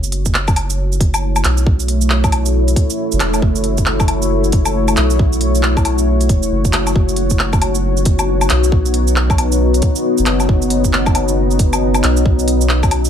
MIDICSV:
0, 0, Header, 1, 4, 480
1, 0, Start_track
1, 0, Tempo, 441176
1, 1814, Time_signature, 4, 2, 24, 8
1, 14250, End_track
2, 0, Start_track
2, 0, Title_t, "Ambient pad"
2, 0, Program_c, 0, 92
2, 0, Note_on_c, 0, 57, 79
2, 0, Note_on_c, 0, 64, 75
2, 0, Note_on_c, 0, 66, 71
2, 0, Note_on_c, 0, 73, 86
2, 7531, Note_off_c, 0, 57, 0
2, 7532, Note_off_c, 0, 64, 0
2, 7562, Note_on_c, 0, 59, 81
2, 7566, Note_on_c, 0, 63, 73
2, 14250, Note_off_c, 0, 59, 0
2, 14250, Note_off_c, 0, 63, 0
2, 14250, Note_off_c, 0, 66, 0
2, 14250, Note_off_c, 0, 73, 0
2, 14250, End_track
3, 0, Start_track
3, 0, Title_t, "Sub bass"
3, 0, Program_c, 1, 38
3, 0, Note_on_c, 1, 30, 94
3, 1562, Note_off_c, 1, 30, 0
3, 1577, Note_on_c, 1, 35, 87
3, 3003, Note_off_c, 1, 35, 0
3, 3403, Note_on_c, 1, 30, 89
3, 3488, Note_off_c, 1, 30, 0
3, 3497, Note_on_c, 1, 28, 85
3, 3721, Note_off_c, 1, 28, 0
3, 3725, Note_on_c, 1, 30, 101
3, 5398, Note_off_c, 1, 30, 0
3, 5411, Note_on_c, 1, 35, 88
3, 6852, Note_on_c, 1, 28, 80
3, 6868, Note_off_c, 1, 35, 0
3, 7078, Note_off_c, 1, 28, 0
3, 7088, Note_on_c, 1, 30, 85
3, 7559, Note_off_c, 1, 30, 0
3, 7570, Note_on_c, 1, 30, 92
3, 9240, Note_off_c, 1, 30, 0
3, 9260, Note_on_c, 1, 35, 90
3, 10685, Note_off_c, 1, 35, 0
3, 11086, Note_on_c, 1, 30, 89
3, 11169, Note_off_c, 1, 30, 0
3, 11175, Note_on_c, 1, 30, 91
3, 11399, Note_off_c, 1, 30, 0
3, 11412, Note_on_c, 1, 30, 97
3, 13081, Note_off_c, 1, 30, 0
3, 13096, Note_on_c, 1, 35, 82
3, 14250, Note_off_c, 1, 35, 0
3, 14250, End_track
4, 0, Start_track
4, 0, Title_t, "Drums"
4, 37, Note_on_c, 9, 82, 43
4, 133, Note_on_c, 9, 46, 69
4, 146, Note_off_c, 9, 82, 0
4, 242, Note_off_c, 9, 46, 0
4, 278, Note_on_c, 9, 82, 60
4, 281, Note_on_c, 9, 36, 65
4, 374, Note_on_c, 9, 39, 101
4, 387, Note_off_c, 9, 82, 0
4, 390, Note_off_c, 9, 36, 0
4, 483, Note_off_c, 9, 39, 0
4, 519, Note_on_c, 9, 77, 62
4, 519, Note_on_c, 9, 82, 32
4, 522, Note_on_c, 9, 36, 106
4, 613, Note_off_c, 9, 77, 0
4, 613, Note_on_c, 9, 46, 77
4, 613, Note_on_c, 9, 77, 64
4, 628, Note_off_c, 9, 82, 0
4, 630, Note_off_c, 9, 36, 0
4, 722, Note_off_c, 9, 46, 0
4, 722, Note_off_c, 9, 77, 0
4, 762, Note_on_c, 9, 82, 60
4, 871, Note_off_c, 9, 82, 0
4, 1004, Note_on_c, 9, 82, 32
4, 1094, Note_on_c, 9, 36, 107
4, 1095, Note_on_c, 9, 46, 73
4, 1113, Note_off_c, 9, 82, 0
4, 1203, Note_off_c, 9, 36, 0
4, 1203, Note_off_c, 9, 46, 0
4, 1240, Note_on_c, 9, 77, 68
4, 1240, Note_on_c, 9, 82, 55
4, 1349, Note_off_c, 9, 77, 0
4, 1349, Note_off_c, 9, 82, 0
4, 1479, Note_on_c, 9, 77, 63
4, 1479, Note_on_c, 9, 82, 48
4, 1571, Note_on_c, 9, 39, 112
4, 1571, Note_on_c, 9, 46, 77
4, 1588, Note_off_c, 9, 77, 0
4, 1588, Note_off_c, 9, 82, 0
4, 1680, Note_off_c, 9, 39, 0
4, 1680, Note_off_c, 9, 46, 0
4, 1713, Note_on_c, 9, 82, 54
4, 1812, Note_on_c, 9, 36, 125
4, 1822, Note_off_c, 9, 82, 0
4, 1920, Note_off_c, 9, 36, 0
4, 1954, Note_on_c, 9, 82, 44
4, 2050, Note_on_c, 9, 46, 71
4, 2063, Note_off_c, 9, 82, 0
4, 2159, Note_off_c, 9, 46, 0
4, 2191, Note_on_c, 9, 82, 62
4, 2283, Note_on_c, 9, 39, 102
4, 2300, Note_off_c, 9, 82, 0
4, 2392, Note_off_c, 9, 39, 0
4, 2436, Note_on_c, 9, 36, 102
4, 2437, Note_on_c, 9, 77, 62
4, 2437, Note_on_c, 9, 82, 32
4, 2528, Note_off_c, 9, 77, 0
4, 2528, Note_on_c, 9, 46, 71
4, 2528, Note_on_c, 9, 77, 66
4, 2545, Note_off_c, 9, 36, 0
4, 2545, Note_off_c, 9, 82, 0
4, 2637, Note_off_c, 9, 46, 0
4, 2637, Note_off_c, 9, 77, 0
4, 2673, Note_on_c, 9, 82, 58
4, 2782, Note_off_c, 9, 82, 0
4, 2916, Note_on_c, 9, 46, 39
4, 2916, Note_on_c, 9, 82, 33
4, 3006, Note_on_c, 9, 36, 110
4, 3008, Note_off_c, 9, 46, 0
4, 3008, Note_on_c, 9, 46, 72
4, 3025, Note_off_c, 9, 82, 0
4, 3115, Note_off_c, 9, 36, 0
4, 3117, Note_off_c, 9, 46, 0
4, 3155, Note_on_c, 9, 82, 61
4, 3264, Note_off_c, 9, 82, 0
4, 3393, Note_on_c, 9, 82, 47
4, 3483, Note_on_c, 9, 39, 116
4, 3483, Note_on_c, 9, 46, 77
4, 3483, Note_on_c, 9, 77, 55
4, 3502, Note_off_c, 9, 82, 0
4, 3592, Note_off_c, 9, 39, 0
4, 3592, Note_off_c, 9, 46, 0
4, 3592, Note_off_c, 9, 77, 0
4, 3631, Note_on_c, 9, 77, 49
4, 3631, Note_on_c, 9, 82, 56
4, 3725, Note_on_c, 9, 36, 121
4, 3740, Note_off_c, 9, 77, 0
4, 3740, Note_off_c, 9, 82, 0
4, 3834, Note_off_c, 9, 36, 0
4, 3868, Note_on_c, 9, 82, 43
4, 3958, Note_on_c, 9, 46, 65
4, 3976, Note_off_c, 9, 82, 0
4, 4067, Note_off_c, 9, 46, 0
4, 4108, Note_on_c, 9, 82, 57
4, 4114, Note_on_c, 9, 36, 64
4, 4197, Note_on_c, 9, 39, 101
4, 4217, Note_off_c, 9, 82, 0
4, 4223, Note_off_c, 9, 36, 0
4, 4306, Note_off_c, 9, 39, 0
4, 4350, Note_on_c, 9, 77, 55
4, 4350, Note_on_c, 9, 82, 32
4, 4354, Note_on_c, 9, 36, 106
4, 4440, Note_off_c, 9, 77, 0
4, 4440, Note_on_c, 9, 46, 69
4, 4440, Note_on_c, 9, 77, 58
4, 4458, Note_off_c, 9, 82, 0
4, 4463, Note_off_c, 9, 36, 0
4, 4548, Note_off_c, 9, 46, 0
4, 4548, Note_off_c, 9, 77, 0
4, 4593, Note_on_c, 9, 82, 57
4, 4702, Note_off_c, 9, 82, 0
4, 4832, Note_on_c, 9, 82, 33
4, 4922, Note_on_c, 9, 46, 70
4, 4928, Note_on_c, 9, 36, 112
4, 4940, Note_off_c, 9, 82, 0
4, 5031, Note_off_c, 9, 46, 0
4, 5037, Note_off_c, 9, 36, 0
4, 5064, Note_on_c, 9, 77, 60
4, 5064, Note_on_c, 9, 82, 56
4, 5173, Note_off_c, 9, 77, 0
4, 5173, Note_off_c, 9, 82, 0
4, 5310, Note_on_c, 9, 77, 62
4, 5310, Note_on_c, 9, 82, 46
4, 5406, Note_on_c, 9, 39, 117
4, 5406, Note_on_c, 9, 46, 75
4, 5419, Note_off_c, 9, 77, 0
4, 5419, Note_off_c, 9, 82, 0
4, 5514, Note_off_c, 9, 39, 0
4, 5514, Note_off_c, 9, 46, 0
4, 5552, Note_on_c, 9, 82, 55
4, 5651, Note_on_c, 9, 36, 123
4, 5660, Note_off_c, 9, 82, 0
4, 5760, Note_off_c, 9, 36, 0
4, 5796, Note_on_c, 9, 82, 41
4, 5884, Note_on_c, 9, 46, 70
4, 5905, Note_off_c, 9, 82, 0
4, 5992, Note_off_c, 9, 46, 0
4, 6038, Note_on_c, 9, 82, 55
4, 6125, Note_on_c, 9, 39, 109
4, 6147, Note_off_c, 9, 82, 0
4, 6233, Note_off_c, 9, 39, 0
4, 6276, Note_on_c, 9, 36, 100
4, 6278, Note_on_c, 9, 77, 55
4, 6278, Note_on_c, 9, 82, 28
4, 6365, Note_off_c, 9, 77, 0
4, 6365, Note_on_c, 9, 46, 73
4, 6365, Note_on_c, 9, 77, 59
4, 6385, Note_off_c, 9, 36, 0
4, 6387, Note_off_c, 9, 82, 0
4, 6474, Note_off_c, 9, 46, 0
4, 6474, Note_off_c, 9, 77, 0
4, 6510, Note_on_c, 9, 82, 55
4, 6619, Note_off_c, 9, 82, 0
4, 6753, Note_on_c, 9, 46, 42
4, 6753, Note_on_c, 9, 82, 32
4, 6847, Note_off_c, 9, 46, 0
4, 6847, Note_on_c, 9, 46, 72
4, 6848, Note_on_c, 9, 36, 113
4, 6862, Note_off_c, 9, 82, 0
4, 6956, Note_off_c, 9, 46, 0
4, 6957, Note_off_c, 9, 36, 0
4, 6994, Note_on_c, 9, 82, 53
4, 7103, Note_off_c, 9, 82, 0
4, 7233, Note_on_c, 9, 82, 46
4, 7234, Note_on_c, 9, 36, 66
4, 7323, Note_on_c, 9, 39, 112
4, 7323, Note_on_c, 9, 46, 74
4, 7323, Note_on_c, 9, 77, 53
4, 7341, Note_off_c, 9, 82, 0
4, 7343, Note_off_c, 9, 36, 0
4, 7432, Note_off_c, 9, 39, 0
4, 7432, Note_off_c, 9, 46, 0
4, 7432, Note_off_c, 9, 77, 0
4, 7472, Note_on_c, 9, 77, 48
4, 7472, Note_on_c, 9, 82, 52
4, 7568, Note_on_c, 9, 36, 113
4, 7580, Note_off_c, 9, 77, 0
4, 7580, Note_off_c, 9, 82, 0
4, 7677, Note_off_c, 9, 36, 0
4, 7711, Note_on_c, 9, 82, 40
4, 7795, Note_on_c, 9, 46, 73
4, 7820, Note_off_c, 9, 82, 0
4, 7904, Note_off_c, 9, 46, 0
4, 7942, Note_on_c, 9, 82, 57
4, 7954, Note_on_c, 9, 36, 63
4, 8041, Note_on_c, 9, 39, 99
4, 8051, Note_off_c, 9, 82, 0
4, 8063, Note_off_c, 9, 36, 0
4, 8150, Note_off_c, 9, 39, 0
4, 8191, Note_on_c, 9, 77, 59
4, 8191, Note_on_c, 9, 82, 29
4, 8194, Note_on_c, 9, 36, 96
4, 8286, Note_off_c, 9, 77, 0
4, 8286, Note_on_c, 9, 46, 76
4, 8286, Note_on_c, 9, 77, 61
4, 8300, Note_off_c, 9, 82, 0
4, 8303, Note_off_c, 9, 36, 0
4, 8395, Note_off_c, 9, 46, 0
4, 8395, Note_off_c, 9, 77, 0
4, 8431, Note_on_c, 9, 82, 54
4, 8540, Note_off_c, 9, 82, 0
4, 8670, Note_on_c, 9, 82, 30
4, 8763, Note_on_c, 9, 46, 73
4, 8769, Note_on_c, 9, 36, 107
4, 8779, Note_off_c, 9, 82, 0
4, 8872, Note_off_c, 9, 46, 0
4, 8878, Note_off_c, 9, 36, 0
4, 8911, Note_on_c, 9, 77, 62
4, 8911, Note_on_c, 9, 82, 55
4, 9019, Note_off_c, 9, 77, 0
4, 9019, Note_off_c, 9, 82, 0
4, 9153, Note_on_c, 9, 77, 61
4, 9153, Note_on_c, 9, 82, 45
4, 9245, Note_on_c, 9, 39, 108
4, 9245, Note_on_c, 9, 46, 83
4, 9262, Note_off_c, 9, 77, 0
4, 9262, Note_off_c, 9, 82, 0
4, 9353, Note_off_c, 9, 39, 0
4, 9353, Note_off_c, 9, 46, 0
4, 9398, Note_on_c, 9, 82, 53
4, 9489, Note_on_c, 9, 36, 116
4, 9506, Note_off_c, 9, 82, 0
4, 9598, Note_off_c, 9, 36, 0
4, 9635, Note_on_c, 9, 82, 39
4, 9726, Note_on_c, 9, 46, 78
4, 9743, Note_off_c, 9, 82, 0
4, 9834, Note_off_c, 9, 46, 0
4, 9874, Note_on_c, 9, 82, 56
4, 9967, Note_on_c, 9, 39, 98
4, 9983, Note_off_c, 9, 82, 0
4, 10076, Note_off_c, 9, 39, 0
4, 10117, Note_on_c, 9, 36, 105
4, 10121, Note_on_c, 9, 77, 58
4, 10121, Note_on_c, 9, 82, 29
4, 10209, Note_off_c, 9, 77, 0
4, 10209, Note_on_c, 9, 46, 82
4, 10209, Note_on_c, 9, 77, 61
4, 10226, Note_off_c, 9, 36, 0
4, 10230, Note_off_c, 9, 82, 0
4, 10318, Note_off_c, 9, 46, 0
4, 10318, Note_off_c, 9, 77, 0
4, 10357, Note_on_c, 9, 82, 55
4, 10466, Note_off_c, 9, 82, 0
4, 10601, Note_on_c, 9, 46, 45
4, 10601, Note_on_c, 9, 82, 31
4, 10684, Note_off_c, 9, 46, 0
4, 10684, Note_on_c, 9, 46, 81
4, 10691, Note_on_c, 9, 36, 99
4, 10709, Note_off_c, 9, 82, 0
4, 10793, Note_off_c, 9, 46, 0
4, 10799, Note_off_c, 9, 36, 0
4, 10832, Note_on_c, 9, 82, 52
4, 10941, Note_off_c, 9, 82, 0
4, 11073, Note_on_c, 9, 82, 45
4, 11164, Note_on_c, 9, 39, 113
4, 11164, Note_on_c, 9, 46, 79
4, 11164, Note_on_c, 9, 77, 55
4, 11182, Note_off_c, 9, 82, 0
4, 11272, Note_off_c, 9, 39, 0
4, 11272, Note_off_c, 9, 46, 0
4, 11272, Note_off_c, 9, 77, 0
4, 11314, Note_on_c, 9, 77, 47
4, 11314, Note_on_c, 9, 82, 49
4, 11413, Note_on_c, 9, 36, 121
4, 11423, Note_off_c, 9, 77, 0
4, 11423, Note_off_c, 9, 82, 0
4, 11521, Note_off_c, 9, 36, 0
4, 11554, Note_on_c, 9, 82, 44
4, 11646, Note_on_c, 9, 46, 80
4, 11663, Note_off_c, 9, 82, 0
4, 11754, Note_off_c, 9, 46, 0
4, 11799, Note_on_c, 9, 82, 59
4, 11800, Note_on_c, 9, 36, 61
4, 11894, Note_on_c, 9, 39, 100
4, 11908, Note_off_c, 9, 82, 0
4, 11909, Note_off_c, 9, 36, 0
4, 12003, Note_off_c, 9, 39, 0
4, 12037, Note_on_c, 9, 77, 61
4, 12037, Note_on_c, 9, 82, 31
4, 12041, Note_on_c, 9, 36, 96
4, 12131, Note_off_c, 9, 77, 0
4, 12131, Note_on_c, 9, 46, 80
4, 12131, Note_on_c, 9, 77, 61
4, 12146, Note_off_c, 9, 82, 0
4, 12150, Note_off_c, 9, 36, 0
4, 12239, Note_off_c, 9, 46, 0
4, 12239, Note_off_c, 9, 77, 0
4, 12277, Note_on_c, 9, 82, 58
4, 12386, Note_off_c, 9, 82, 0
4, 12519, Note_on_c, 9, 82, 31
4, 12613, Note_on_c, 9, 46, 80
4, 12615, Note_on_c, 9, 36, 104
4, 12628, Note_off_c, 9, 82, 0
4, 12722, Note_off_c, 9, 46, 0
4, 12723, Note_off_c, 9, 36, 0
4, 12762, Note_on_c, 9, 77, 67
4, 12762, Note_on_c, 9, 82, 56
4, 12871, Note_off_c, 9, 77, 0
4, 12871, Note_off_c, 9, 82, 0
4, 12997, Note_on_c, 9, 77, 64
4, 12997, Note_on_c, 9, 82, 46
4, 13095, Note_on_c, 9, 39, 110
4, 13095, Note_on_c, 9, 46, 84
4, 13106, Note_off_c, 9, 77, 0
4, 13106, Note_off_c, 9, 82, 0
4, 13204, Note_off_c, 9, 39, 0
4, 13204, Note_off_c, 9, 46, 0
4, 13239, Note_on_c, 9, 82, 53
4, 13335, Note_on_c, 9, 36, 117
4, 13348, Note_off_c, 9, 82, 0
4, 13443, Note_off_c, 9, 36, 0
4, 13481, Note_on_c, 9, 82, 43
4, 13575, Note_on_c, 9, 46, 80
4, 13590, Note_off_c, 9, 82, 0
4, 13684, Note_off_c, 9, 46, 0
4, 13722, Note_on_c, 9, 82, 61
4, 13809, Note_on_c, 9, 39, 101
4, 13831, Note_off_c, 9, 82, 0
4, 13918, Note_off_c, 9, 39, 0
4, 13960, Note_on_c, 9, 77, 63
4, 13960, Note_on_c, 9, 82, 31
4, 13962, Note_on_c, 9, 36, 101
4, 14049, Note_off_c, 9, 77, 0
4, 14049, Note_on_c, 9, 46, 79
4, 14049, Note_on_c, 9, 77, 66
4, 14069, Note_off_c, 9, 82, 0
4, 14071, Note_off_c, 9, 36, 0
4, 14157, Note_off_c, 9, 46, 0
4, 14157, Note_off_c, 9, 77, 0
4, 14195, Note_on_c, 9, 82, 55
4, 14250, Note_off_c, 9, 82, 0
4, 14250, End_track
0, 0, End_of_file